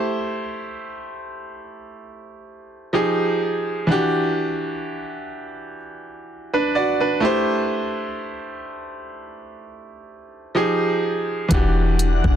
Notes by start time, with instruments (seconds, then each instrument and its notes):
Already playing: grand piano A3 E4 G4 C5
2.93 grand piano F3 D#4 G4 G#4
3.87 grand piano E3 D4 F#4
3.92 grand piano G4
6.54 grand piano D4 B4
6.75 grand piano F#4 D5
7.00 grand piano D4 B4
7.20 grand piano A3 E4 G4
7.25 grand piano C5
10.55 grand piano F3 D#4 G4 G#4
11.48 808-style bass E1, grand piano E3 D4 F#4, ambient pad E3 D4 F#5, kick, closed hi-hat
11.53 grand piano G4
11.99 closed hi-hat
12.24 808-style bass E1, kick